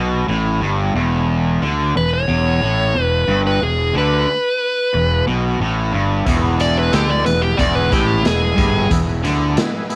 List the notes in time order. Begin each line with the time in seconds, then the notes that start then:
Already playing: B1 B2
0.28 A1 A2
0.61 G1 G2
0.95 E1 E2
1.62 D2 D3
1.95 E1 E2 B4
2.14 C#5
2.28 E1 E2
2.62 A1 A2
2.94 E1 E2
3.02 B4
3.27 G1 G2
3.47 B4
3.62 E1 E2 G#4
3.95 D2 D3 B4
4.94 E1 E2
5.27 B1 B2
5.60 A1 A2
5.93 G1 G2
6.25 E1 E2 B3 E4 G#4, kick, closed hi-hat
6.58 B3 E4 G#4 D5, closed hi-hat
6.79 B4
6.92 D2 D3 B3 E4 G4 G#4, snare, closed hi-hat
7.10 D5
7.25 E1 E2 B3 E4 G#4 B4, closed hi-hat
7.42 G4
7.57 E1 E2 B3 E4 G#4 D5, kick, closed hi-hat
7.75 B4
7.89 A1 A2 G#3 B3 E4, kick, closed hi-hat
7.93 G4
8.24 E1 E2 B3 E4 G#4, snare, closed hi-hat
8.56 G1 G2 B3 E4 G#4, kick, closed hi-hat
8.90 E1 E2 B3 E4 G#4, kick, closed hi-hat
9.23 D2 D3 B3 E4 G#4, closed hi-hat
9.55 B3 E4 G#4, snare, closed hi-hat
9.89 B3 E4 G#4, closed hi-hat